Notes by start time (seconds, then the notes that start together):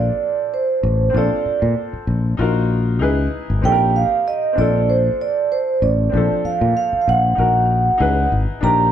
Already playing: C4 D4 F4 A4 D5
0.54 C5
0.83 A1
1.10 C4 D4
1.14 A#1 F4 A4 D5
1.46 muted fingered electric bass stroke
1.62 A#2
1.93 muted fingered electric bass stroke
2.07 A#1
2.37 A#1 D#4 F4 F#4 A#4
2.99 C#2 D#4 E4 G#4 B4
3.50 G#1
3.62 A#1 C4 D#4 G4 A4 G5
3.72 A#4
3.96 F5
4.28 D#5
4.53 C4 D4
4.58 A#1 F4 A4 D5
4.90 C5
5.21 D5
5.52 C5
5.82 A1 D5
6.10 A#1 C4 D4
6.14 F3 A4
6.44 F5, muted fingered electric bass stroke
6.61 A#2
6.77 F5
6.93 muted fingered electric bass stroke
7.02 F5
7.08 A#1 F#5
7.35 A#1 D#4 F#4
7.39 A#4
7.98 C#2 D#4 E4 G#4 B4
8.32 G#1
8.61 A#1 D4 D#4 G4 A#4 A#5